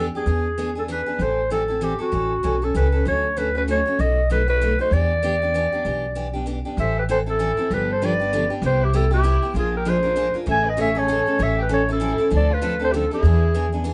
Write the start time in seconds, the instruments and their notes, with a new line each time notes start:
0.15 steel-string acoustic guitar B3 D4 G4, clarinet G#4
0.26 upright bass E2, steel-string acoustic guitar E3 B3 D4 G#4
0.58 steel-string acoustic guitar E3 B3 D4 G#4
0.75 steel-string acoustic guitar B3 D4 G#4, clarinet A4
0.88 steel-string acoustic guitar E3 B3 D4 G#4, clarinet B4
1.06 steel-string acoustic guitar B3 D4 G#4
1.19 upright bass A1, steel-string acoustic guitar E3 G3 C4 E4 A4, clarinet C5
1.50 steel-string acoustic guitar E3 G3 C4 E4 A4, clarinet A4
1.68 steel-string acoustic guitar C4 E4 A4
1.81 steel-string acoustic guitar E3 G3 C4 E4 A4, clarinet G4
1.99 steel-string acoustic guitar C4 E4 A4, clarinet F#4
2.12 upright bass A1, steel-string acoustic guitar E3 G3 C#4 E4 A4
2.43 upright bass B1, steel-string acoustic guitar E3 G3 C#4 E4 A4
2.62 steel-string acoustic guitar C#4 E4 A4, clarinet A4
2.74 upright bass C#2, steel-string acoustic guitar E3 G3 C#4 E4 A4, clarinet B4
2.92 steel-string acoustic guitar C#4 E4 A4
3.05 upright bass D2, steel-string acoustic guitar D3 F#3 A3 C#4 F#4, clarinet C#5
3.37 steel-string acoustic guitar D3 F#3 A3 C#4 F#4, clarinet B4
3.55 steel-string acoustic guitar A3 C#4 F#4, clarinet B4
3.68 steel-string acoustic guitar D3 F#3 A3 C#4 F#4, clarinet C#5
3.86 steel-string acoustic guitar A3 C#4 F#4
3.99 upright bass B1, steel-string acoustic guitar B2 F#3 A3 D#4 F#4, clarinet D#5
4.30 steel-string acoustic guitar B2 F#3 A3 D#4 F#4, clarinet B4
4.48 steel-string acoustic guitar A3 D#4 F#4, clarinet B4
4.61 steel-string acoustic guitar B2 F#3 A3 D#4 F#4
4.79 steel-string acoustic guitar A3 D#4 F#4, clarinet C5
4.91 upright bass E2, steel-string acoustic guitar E3 B3 D4 G4, clarinet D5
5.23 steel-string acoustic guitar E3 B3 D4 G4
5.42 steel-string acoustic guitar B3 D4 G4
5.54 steel-string acoustic guitar E3 B3 D4 G4
5.72 steel-string acoustic guitar B3 D4 G4
5.85 upright bass B1, steel-string acoustic guitar E3 B3 D4 G4
6.15 steel-string acoustic guitar E3 B3 D4 G4
6.33 steel-string acoustic guitar B3 D4 G4
6.46 steel-string acoustic guitar E3 B3 D4 G4
6.65 steel-string acoustic guitar B3 D4 G4
6.77 upright bass A1, steel-string acoustic guitar E3 G3 C4 E4 A4, violin C5, clarinet E5
6.98 violin G4, clarinet B4
7.09 steel-string acoustic guitar E3 G3 C4 E4 A4, violin A4, clarinet C5
7.26 steel-string acoustic guitar C4 E4 A4, violin E4, clarinet A4
7.39 steel-string acoustic guitar E3 G3 C4 E4 A4
7.57 steel-string acoustic guitar C4 E4 A4
7.70 upright bass G1, steel-string acoustic guitar D3 F3 B3 D4 G4, violin G4, clarinet B4
7.88 violin A4
7.92 clarinet C5
8.02 steel-string acoustic guitar D3 F3 B3 D4 G4, violin B4, clarinet D5
8.20 steel-string acoustic guitar B3 D4 G4
8.33 steel-string acoustic guitar D3 F3 B3 D4 G4
8.50 steel-string acoustic guitar B3 D4 G4
8.62 upright bass C2, steel-string acoustic guitar C3 G3 B3 E4 G4, violin G4
8.66 clarinet C5
8.82 violin E4, clarinet G4
8.93 steel-string acoustic guitar C3 G3 B3 E4 G4, violin E4, clarinet A4
9.11 steel-string acoustic guitar B3 E4 G4, violin E4, clarinet G4
9.23 steel-string acoustic guitar C3 G3 B3 E4 G4
9.42 steel-string acoustic guitar B3 E4 G4
9.54 upright bass A#1, steel-string acoustic guitar F3 G#3 D4 F4 A#4, violin F4
9.59 clarinet G#4
9.74 violin G4, clarinet A#4
9.85 steel-string acoustic guitar F3 G#3 D4 F4 A#4, violin G#4, clarinet C5
10.03 steel-string acoustic guitar D4 F4 A#4
10.16 steel-string acoustic guitar F3 G#3 D4 F4 A#4
10.34 steel-string acoustic guitar D4 F4 A#4
10.46 upright bass A1, steel-string acoustic guitar C#3 E3 A3 C#4 G#4, violin E5
10.51 clarinet G#5
10.66 violin B4, clarinet D#5
10.77 steel-string acoustic guitar C#3 E3 A3 C#4 G#4, violin C#5
10.81 clarinet E5
10.95 steel-string acoustic guitar A3 C#4 G#4, violin A4, clarinet C#5
11.08 steel-string acoustic guitar C#3 E3 A3 C#4 G#4
11.26 steel-string acoustic guitar A3 C#4 G#4
11.39 upright bass A1, steel-string acoustic guitar E3 G3 C#4 E4 A4, violin C#5, clarinet E5
11.58 violin G4
11.62 clarinet B4
11.69 steel-string acoustic guitar E3 G3 C#4 E4 A4, violin A4
11.74 clarinet C#5
11.89 steel-string acoustic guitar C#4 E4 A4, violin E4, clarinet A4
12.00 steel-string acoustic guitar E3 G3 C#4 E4 A4
12.18 steel-string acoustic guitar C#4 E4 A4
12.30 upright bass D2, steel-string acoustic guitar D3 F3 C4 D4 A4, violin A4
12.36 clarinet D5
12.51 violin F4, clarinet B4
12.62 steel-string acoustic guitar D3 F3 C4 D4 A4
12.79 steel-string acoustic guitar C4 D4 A4, violin A4
12.84 clarinet C5
12.90 steel-string acoustic guitar D3 F3 C4, violin E4, clarinet G4
12.94 steel-string acoustic guitar D4 A4, violin F4, clarinet A4
13.11 steel-string acoustic guitar C4 D4 A4, violin E4, clarinet G#4
13.23 upright bass E2, steel-string acoustic guitar E3 B3 D4 G#4
13.54 steel-string acoustic guitar E3 B3 D4 G#4
13.73 steel-string acoustic guitar B3 D4 G#4
13.84 steel-string acoustic guitar E3 B3 D4 G#4